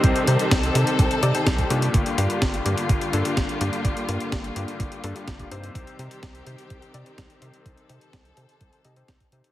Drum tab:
HH |xxxxxxxxxxxxxxxx|xxxxxxxxxxxxxxxx|xxxxxxxxxxxxxxxx|xxxxxxxxxxxxxxxx|
SD |----o-------o---|----o-------o---|----o-------o---|----o-------o---|
BD |o---o---o---oo--|o---o---o---o---|o---o---o---oo--|o---o---o---o---|

HH |xxxxxxxxxxxxxxxx|
SD |----o-------o---|
BD |o---o---o---oo--|